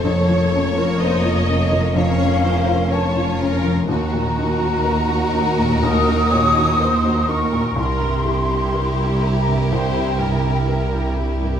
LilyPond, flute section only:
\new Staff \with { instrumentName = "Flute section" } { \time 4/4 \key bes \minor \tempo 4 = 62 des''8. bes'16 c''16 des''16 ees''8 f''4 a''8 r8 | bes''2 ees'''4. des'''8 | c'''4. bes''8 g''4. r8 | }